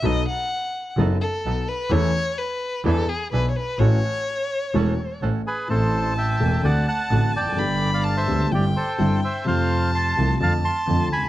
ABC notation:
X:1
M:4/4
L:1/16
Q:1/4=127
K:A
V:1 name="Bandoneon"
z16 | z16 | z12 z2 [GB]2 | [K:Am] [Ac]4 [eg]4 [d^f]2 [fa]4 [dg]2- |
[dg]3 [df]2 [ce]3 [Gd]2 [Ac]4 [ce]2 | [cf]4 [ac']4 [fa]2 [ac']4 [^gb]2 |]
V:2 name="Violin"
^d2 f6 z2 A4 B2 | c4 B4 A2 G2 B3/2 c/2 B2 | c12 z4 | [K:Am] a8 a8 |
b4 a4 g4 g4 | a8 a8 |]
V:3 name="Bandoneon"
[B,^DA]2 z6 [B,DA]2 z2 [B,DA]2 z2 | [CEA]2 z6 [DEG]2 z2 [DEG]2 z2 | [CFA]2 z6 [CFA]2 z2 [CFA]2 z2 | [K:Am] z16 |
z16 | z16 |]
V:4 name="Upright piano" clef=bass
[B,,,B,,F,B,^DA]2 z6 [F,,,F,,F,B,DA]2 z2 [B,,,B,,]2 z2 | [E,,E,A,CA]2 z6 [E,,E,B,DG]2 z2 [B,,,B,,]2 z2 | [A,,,A,,E,A,CF]2 z6 [E,,,E,,E,A,CF]2 z2 [A,,,A,,]2 z2 | [K:Am] [A,,,A,,E,A,CA]6 [E,,,E,,E,A,CA]2 [D,,D,A,C^F]2 z2 [A,,,A,,D,A,CF]2 z/2 E,,/2 =F,,/2 ^F,,/2 |
[G,,,G,,D,G,B,G]6 [D,,D,G,B,G]2 [G,,,G,,D,G,CE]2 z2 [G,,,G,,D,G,CE]2 z2 | [F,,C,F,A,F]6 [C,,C,F,A,F]2 [F,,D,F,A,CF]2 z2 [F,,D,F,A,CF]2 z/2 ^C,,/2 D,,/2 z/2 |]
V:5 name="Double bass" clef=bass
B,,,2 z6 F,,,2 z2 B,,,2 z2 | E,,2 z6 E,,2 z2 B,,,2 z2 | A,,,2 z6 E,,,2 z2 A,,,2 z2 | [K:Am] A,,,6 E,,,2 D,,2 z2 A,,,2 F,,,2 |
G,,,6 D,,2 G,,,2 z2 G,,,2 z2 | F,,6 C,,2 F,,2 z2 F,,2 D,,2 |]